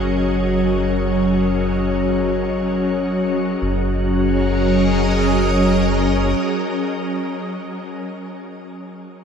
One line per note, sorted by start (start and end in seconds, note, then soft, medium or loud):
0.00 3.57 F#1 medium
0.00 3.59 F#3 medium
0.00 3.61 C#4 medium
0.00 3.62 C#4 medium
0.00 3.62 G#4 medium
0.00 3.61 A#4 medium
0.00 3.63 C#5 medium
0.00 3.62 D#5 medium
3.60 6.35 F#1 medium
3.60 7.87 F#3 medium
3.60 7.88 F#3 medium
3.60 7.90 C#4 medium
3.76 8.03 C#4 medium
3.91 8.08 G#4 medium
4.03 8.07 A#4 medium
4.18 8.07 D#5 medium